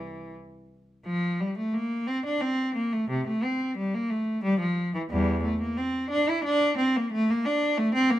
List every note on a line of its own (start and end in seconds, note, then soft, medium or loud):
0.00 0.34 E3 medium
1.05 1.37 F3 medium
1.40 1.56 G3 medium
1.58 1.73 A3 medium
1.74 2.07 A#3 medium
2.07 2.24 C4 medium
2.25 2.41 D4 medium
2.41 2.74 C4 medium
2.74 2.91 A#3 medium
2.93 3.10 A3 medium
3.10 3.26 C3 medium
3.27 3.44 A3 medium
3.44 3.78 C4 medium
3.77 3.94 G3 medium
3.94 4.11 A#3 medium
4.10 4.44 A3 medium
4.43 4.61 G3 medium
4.59 4.93 F3 medium
4.95 5.01 E3 medium
5.10 5.42 E2 medium
5.10 5.43 G3 medium
5.43 5.60 A3 medium
5.61 5.77 A#3 medium
5.77 6.10 C4 medium
6.10 6.26 D4 medium
6.29 6.45 E4 medium
6.43 6.77 D4 loud
6.77 6.94 C4 medium
6.96 7.12 A#3 medium
7.12 7.28 A3 medium
7.30 7.45 A#3 medium
7.45 7.77 D4 medium
7.77 7.93 A3 medium
7.94 8.09 C4 medium
8.10 8.19 A#3 medium